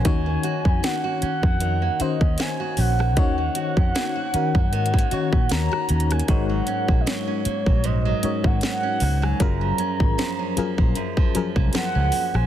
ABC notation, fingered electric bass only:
X:1
M:4/4
L:1/16
Q:"Swing 16ths" 1/4=77
K:Ebm
V:1 name="Fingered electric bass" clef=bass
E,,2 z F,, z3 F,,3 z E,, z2 B,,,2 | E,,2 z F,, z3 G,, A,,2 z B,, E,, z E,,2 | A,,,2 z B,,, z3 B,,,3 z A,,, z2 D,,2 | G,,,2 z A,,, z3 B,,, z3 =C,, z D,, z B,,, |]